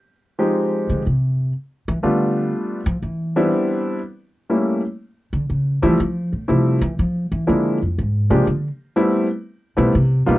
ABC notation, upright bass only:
X:1
M:3/4
L:1/8
Q:"Swing" 1/4=121
K:Am
V:1 name="Upright bass" clef=bass
z3 D, C,2 | z E, D,2 z F, | E,2 z4 | z3 D, ^C, E, |
F, A,, C, E, F, E, | D, F,, _A,, C, D, z | z3 B,, C, B,, |]